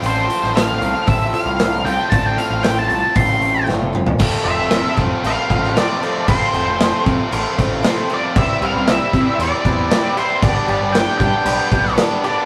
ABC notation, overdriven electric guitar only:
X:1
M:4/4
L:1/8
Q:1/4=116
K:F
V:1 name="Overdriven electric guitar" clef=bass
[A,,F,A,CF]6- [A,,F,A,CF] [A,,F,A,CF]- | [A,,F,A,CF]6- [A,,F,A,CF] z | [K:Flyd] [F,,C,F,A,CF] [F,,C,F,A,CF] [F,,C,F,A,CF] [F,,C,F,A,CF] [F,,C,F,A,CF] [F,,C,F,A,CF] [F,,C,F,A,CF] [F,,C,F,A,CF] | [F,,C,F,A,CF] [F,,C,F,A,CF] [F,,C,F,A,CF] [F,,C,F,A,CF] [F,,C,F,A,CF] [F,,C,F,A,CF] [F,,C,F,A,CF] [F,,C,F,A,CF] |
[C,E,G,CE] [C,E,G,CE] [C,E,G,CE] [C,E,G,CE] [C,E,G,CE] [C,E,G,CE] [C,E,G,CE] [C,E,G,CE] | [G,,D,G,B,DG] [G,,D,G,B,DG] [G,,D,G,B,DG] [G,,D,G,B,DG] [G,,D,G,B,DG] [G,,D,G,B,DG] [G,,D,G,B,DG] [G,,D,G,B,DG] |]